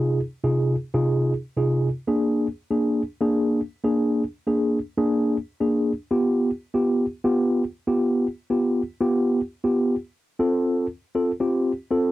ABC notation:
X:1
M:4/4
L:1/16
Q:1/4=119
K:Fdor
V:1 name="Tine electric piano"
[C,EFA] z2 [C,EFA]2 z2 [C,EFA]3 z2 [C,EFA]2 z2 | [B,DA]3 z2 [B,DA]2 z2 [B,DA]3 z2 [B,DA]2- | [B,DA] z2 [B,DA]2 z2 [B,DA]3 z2 [B,DA]2 z2 | [=B,FG]3 z2 [B,FG]2 z2 [B,FG]3 z2 [B,FG]2- |
[=B,FG] z2 [B,FG]2 z2 [B,FG]3 z2 [B,FG]2 z2 | z2 [CF=A]4 z2 [CFA] z [CFG]2 z2 [CFA]2 |]